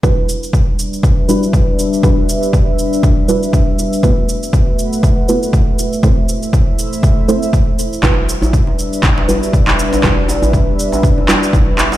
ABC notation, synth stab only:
X:1
M:4/4
L:1/8
Q:"Swing 16ths" 1/4=120
K:Em
V:1 name="Synth stab"
[G,DEFB]4- [G,DEFB] [G,DEFB]3 | [G,DEFB]4- [G,DEFB] [G,DEFB]3 | [A,B,EFB]4- [A,B,EFB] [A,B,EFB]3 | [A,CEAc]4- [A,CEAc] [A,CEAc]3 |
[G,DEFB]4- [G,DEFB] [G,DEFB]3 | [G,DEFB]4- [G,DEFB] [G,DEFB]3 |]